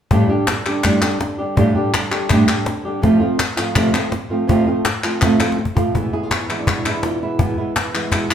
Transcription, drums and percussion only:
0.11 cajon bass
0.47 cajon slap, clap
0.66 clap
0.84 cajon bass, cajon slap, clap
1.02 clap
1.21 cajon slap
1.57 cajon bass
1.94 cajon slap, clap
2.12 cajon slap, clap
2.30 cajon bass, clap
2.48 clap
2.66 cajon slap
3.03 cajon bass
3.22 cajon slap
3.39 cajon slap, clap
3.58 cajon slap, clap
3.76 cajon bass, clap
3.94 clap
4.12 cajon slap
4.49 cajon bass
4.68 cajon slap
4.85 cajon slap, clap
5.04 clap
5.21 cajon bass, clap
5.40 cajon slap, clap
5.52 cajon slap
5.65 cajon bass
5.77 cajon bass
5.95 cajon bass
6.31 cajon slap, clap
6.49 cajon slap, clap
6.67 cajon bass, clap
6.86 clap
7.03 cajon slap
7.39 cajon bass
7.58 cajon slap
7.76 cajon slap, clap
7.95 clap
8.12 cajon bass, cajon slap, clap
8.31 clap

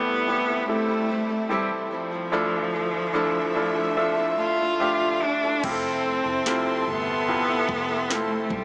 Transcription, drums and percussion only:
5.64 kick, floor tom, crash
6.25 floor tom
6.46 snare
6.87 floor tom
7.07 floor tom
7.28 floor tom
7.69 kick
8.10 snare
8.50 kick

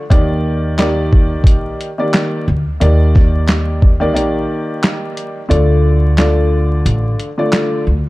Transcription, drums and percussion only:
0.11 kick, closed hi-hat
0.79 snare, clap, closed hi-hat
1.13 kick
1.44 kick, closed hi-hat
1.81 closed hi-hat
2.14 snare, clap, closed hi-hat
2.81 closed hi-hat
3.15 kick, snare
3.48 snare, clap, closed hi-hat
3.82 kick
4.16 closed hi-hat
4.83 snare, clap, closed hi-hat
5.17 closed hi-hat
5.51 closed hi-hat
6.18 snare, clap, closed hi-hat
6.86 closed hi-hat
7.20 closed hi-hat
7.52 snare, clap, closed hi-hat

